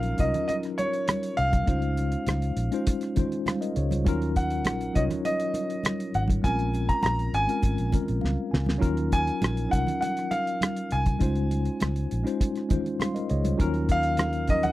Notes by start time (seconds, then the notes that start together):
Already playing: A#1 F#3 C#4 D#4 F4 A#4 F5
0.03 closed hi-hat
0.17 C2 F#3 C#4 D#4 F4 A#4 D#5, kick, closed hi-hat
0.34 closed hi-hat, low conga
0.48 D#5, closed hi-hat, muted conga
0.63 cross-stick, closed hi-hat
0.78 C#5, closed hi-hat, muted conga
0.93 closed hi-hat
1.08 cross-stick, closed hi-hat, high conga
1.23 closed hi-hat
1.37 C2 F5, closed hi-hat
1.53 kick, closed hi-hat, high conga
1.66 C#2 G#3 C#4 D#4 F4 C5, kick, closed hi-hat
1.82 closed hi-hat
1.97 closed hi-hat, muted conga
2.12 closed hi-hat
2.27 C#2, cross-stick, closed hi-hat, high conga
2.42 closed hi-hat
2.57 A#1, closed hi-hat
2.71 G#3 C#4 D#4 F4 C5, closed hi-hat
2.87 kick, closed hi-hat, muted conga
3.01 cross-stick, closed hi-hat
3.16 G#3 C#4 D#4 F4 C5, kick, closed hi-hat, muted conga, low conga
3.32 closed hi-hat
3.46 C5 F5, cross-stick, closed hi-hat, high conga
3.61 A#4 D#5, closed hi-hat
3.76 C#2 G#4 C#5, closed hi-hat
3.91 F4 C5, closed hi-hat, high conga
4.05 D#2 F#3 C#4 D#4 F4 A#4, kick, closed hi-hat
4.22 closed hi-hat
4.36 F#5, kick, closed hi-hat
4.50 closed hi-hat
4.65 A#1, cross-stick, closed hi-hat, high conga
4.81 closed hi-hat
4.93 C2 F#3 C#4 D#4 F4 C#5 D#5, kick, closed hi-hat
5.10 cross-stick, closed hi-hat, low conga
5.25 D#5, closed hi-hat, muted conga
5.40 closed hi-hat
5.54 closed hi-hat, muted conga
5.70 closed hi-hat
5.84 cross-stick, closed hi-hat, high conga
6.00 closed hi-hat
6.14 G#1 F#5, closed hi-hat
6.28 kick, closed hi-hat, high conga
6.42 A#1 G#3 C4 C#4 F4 A#4 G#5, kick, closed hi-hat
6.59 closed hi-hat
6.74 closed hi-hat, muted conga
6.89 A#5, kick, closed hi-hat
7.03 A#1 A#5, cross-stick, closed hi-hat, high conga
7.19 closed hi-hat
7.33 G#1 G#5, closed hi-hat
7.47 G#3 C4 C#4 F4 A#4, closed hi-hat
7.62 G#1, kick, closed hi-hat, muted conga
7.78 A#1, closed hi-hat
7.91 G#3 C4 C#4 F4 A#4, kick, closed hi-hat, muted conga, low conga
8.08 A#1, closed hi-hat
8.21 C#2 F5, snare, high conga
8.51 C#2 G#5, snare
8.66 snare, high conga
8.78 F#3 C#4 D#4 F4 A#4
8.82 D#2, kick, closed hi-hat
8.97 closed hi-hat
9.12 G#5, kick, closed hi-hat
9.27 closed hi-hat
9.42 A#1, cross-stick, closed hi-hat, high conga
9.57 closed hi-hat
9.68 F#3 C#4 D#4 F4 A#4 F#5
9.73 C2, kick, closed hi-hat
9.87 closed hi-hat, low conga
10.01 F#5, closed hi-hat, muted conga
10.17 cross-stick, closed hi-hat
10.31 F5, closed hi-hat, muted conga
10.47 closed hi-hat
10.61 cross-stick, closed hi-hat, high conga
10.77 closed hi-hat
10.91 C2 G#5, closed hi-hat
11.06 kick, closed hi-hat, high conga
11.19 C#2 G#3 C#4 D#4 F4 C5, kick, closed hi-hat
11.35 closed hi-hat
11.51 closed hi-hat, muted conga
11.65 closed hi-hat
11.80 C#2, cross-stick, closed hi-hat, high conga
11.96 closed hi-hat
12.11 A#1, closed hi-hat
12.24 G#3 C#4 D#4 F4 C5, cross-stick, closed hi-hat
12.41 kick, closed hi-hat, muted conga
12.56 cross-stick, closed hi-hat
12.69 G#3 C#4 D#4 F4 C5, kick, closed hi-hat, muted conga, low conga
12.86 closed hi-hat
13.00 C5 F5 C6, cross-stick, closed hi-hat, high conga
13.14 A#4 D#5, closed hi-hat
13.29 C#2 G#4 C#5 D#5, closed hi-hat
13.44 F4 C5, closed hi-hat, high conga
13.58 D#2 F#3 C#4 D#4 F4 A#4, kick, closed hi-hat
13.74 closed hi-hat
13.89 F5, kick, closed hi-hat, muted conga
14.03 closed hi-hat
14.17 cross-stick, closed hi-hat, high conga
14.33 closed hi-hat
14.47 F3 F#3 C#4 D#4 A#4 D#5, kick, closed hi-hat
14.63 F#5, closed hi-hat, low conga